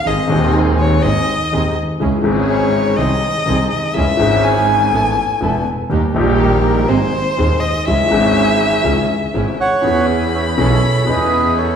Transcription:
<<
  \new Staff \with { instrumentName = "Violin" } { \time 4/4 \key cis \minor \tempo 4 = 123 dis''4 r8 cis''8 dis''4. r8 | r4 cis''4 dis''4. dis''8 | e''4 gis''2~ gis''8 r8 | r4 ais'4 bis'4. dis''8 |
e''2.~ e''8 r8 | \key e \major b''1 | }
  \new Staff \with { instrumentName = "Bandoneon" } { \time 4/4 \key cis \minor r1 | r1 | r1 | r1 |
r2. r8 <cis'' fis''>8~ | \key e \major <cis'' fis''>8 r8 <cis'' e''>8 <a' cis''>4 <b' dis''>4 <a' cis''>8 | }
  \new Staff \with { instrumentName = "String section" } { \time 4/4 \key cis \minor <bis dis' gis'>8 <bis dis' gis'>4. <bis dis' gis'>8 r8 <bis dis' gis'>8 r8 | <cis' e' gis'>8 <cis' e' gis'>4. <bis dis' gis'>8 r8 <bis dis' gis'>8 r8 | <cis' e' gis'>8 <cis' e' gis'>4. <b e' a'>8 r8 <b e' a'>8 r8 | <ais dis' g'>8 <ais dis' g'>4. <bis dis' gis'>8 r8 <bis dis' gis'>8 r8 |
<cis' e' gis'>8 <cis' e' gis'>4. <cis' e' gis'>8 r8 <cis' e' gis'>8 r8 | \key e \major <cis' e' gis'>4. <cis' e' gis'>8 r8 <cis' e' gis'>4. | }
  \new Staff \with { instrumentName = "Grand piano" } { \clef bass \time 4/4 \key cis \minor <gis,, gis, dis gis bis gis'>8 <dis,, dis, dis gis bis gis'>4. <gis,, gis, dis gis bis gis'>8 r8 <dis,, dis, dis gis bis gis'>8 r8 | <cis, cis e gis cis' gis'>8 <gis,, gis, e gis cis' gis'>4. <bis,, bis, dis gis bis gis'>8 r8 <bis,, bis, dis gis bis gis'>8 r8 | <cis, cis e gis cis' gis'>8 <gis,, gis, e gis cis' gis'>4. <a,, a, e a b a'>8 r8 <e,, e, e a b a'>8 r8 | <dis, dis g ais g'>8 <ais,, ais, dis g ais g'>4. <gis,, gis, dis gis bis gis'>8 r8 <dis,, dis, dis gis bis gis'>8 r8 |
<cis, cis e gis cis' gis'>8 <gis,, gis, e gis cis' gis'>4. <cis, cis e gis cis' gis'>8 r8 <gis,, gis, e gis cis' gis'>8 r8 | \key e \major <e, e b cis' gis'>4. <b,, b, e b cis' gis'>8 r8 <e, e b cis' gis'>4. | }
  \new Staff \with { instrumentName = "Double bass" } { \clef bass \time 4/4 \key cis \minor gis,,8 dis,4. gis,,8 r8 dis,8 r8 | cis,8 gis,,4. bis,,8 r8 bis,,8 r8 | cis,8 gis,,4. a,,8 r8 e,,8 r8 | dis,8 ais,,4. gis,,8 r8 dis,8 r8 |
cis,8 gis,,4. cis,8 r8 gis,,8 r8 | \key e \major e,4. b,,8 r8 e,4. | }
>>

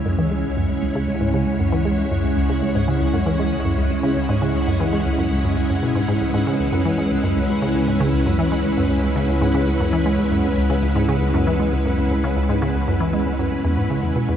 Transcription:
<<
  \new Staff \with { instrumentName = "Synth texture" } { \time 4/4 \key cis \minor \tempo 4 = 117 fis''1~ | fis''1~ | fis''1~ | fis''1~ |
fis''1~ | fis''1~ | fis''1 | }
  \new Staff \with { instrumentName = "String machine" } { \time 4/4 \key cis \minor << { cis''1~ | cis''1~ | cis''1 | b'1~ |
b'1~ | b'1~ | b'1 | } \\ { <gis cis' e'>1~ | <gis cis' e'>1~ | <gis cis' e'>1~ | <gis cis' e'>1~ |
<gis cis' e'>1~ | <gis cis' e'>1~ | <gis cis' e'>1 | } >> }
  \new Staff \with { instrumentName = "Synth arpeggio sound" } { \clef bass \time 4/4 \key cis \minor fis,16 e16 gis16 cis,16 fis,16 cis,16 cis,16 cis16 cis,16 gis,16 cis16 cis,16 fis,16 e16 gis16 cis,16 | fis,16 cis,16 cis,16 cis16 cis,16 gis,16 cis16 cis,16 fis,16 e16 gis16 cis,16 fis,16 cis,16 cis,16 cis16 | cis,16 gis,16 cis16 cis,16 fis,16 e16 gis16 cis,16 fis,16 cis,16 fis,16 cis,16 fis,16 b,16 gis,16 gis,16 | cis,16 gis,16 cis16 cis,16 fis,16 e16 gis16 cis,16 fis,16 cis,16 cis,16 cis16 cis,16 gis,16 cis16 cis,16 |
fis,16 e16 gis16 cis,16 fis,16 cis,16 cis,16 cis16 cis,16 gis,16 cis16 cis,16 fis,16 e16 gis16 cis,16 | fis,16 cis,16 cis,16 cis16 cis,16 gis,16 cis16 cis,16 fis,16 e16 gis16 cis,16 fis,16 cis,16 cis,16 cis16 | cis,16 gis,16 cis16 cis,16 fis,16 e16 gis16 cis,16 fis,16 cis,16 e,16 gis,16 cis16 e,16 b,16 e,16 | }
  \new Staff \with { instrumentName = "Sub bass" } { \clef bass \time 4/4 \key cis \minor cis,1~ | cis,1~ | cis,1 | cis,1~ |
cis,1~ | cis,1~ | cis,1 | }
>>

